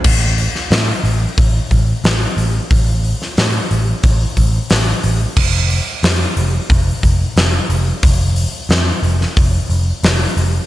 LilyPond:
<<
  \new Staff \with { instrumentName = "Picked electric bass" } { \clef bass \time 4/4 \key f \lydian \tempo 4 = 90 a,,4 a,8 a,,8 a,,8 a,,8 a,,8 a,,8 | a,,4 a,8 a,,8 a,,8 a,,8 a,,8 a,,8 | f,,4 f,8 f,,8 f,,8 f,,8 f,,8 f,,8 | f,,4 f,8 f,,8 f,,8 f,,8 f,,8 f,,8 | }
  \new DrumStaff \with { instrumentName = "Drums" } \drummode { \time 4/4 <cymc bd>8 hho16 sn16 <hho sn>8 hho8 <hho bd>8 <hho bd>8 <hho sn>8 hho8 | <hho bd>8 hho16 sn16 <hho sn>8 hho8 <hho bd>8 <hho bd>8 <hho sn>8 hho8 | <cymc bd>8 hho8 <hho sn>8 hho8 <hho bd>8 <hho bd>8 <hho sn>8 hho8 | <hho bd>8 hho8 <hho sn>8 hho16 sn16 <hho bd>8 hho8 <hho sn>8 hho8 | }
>>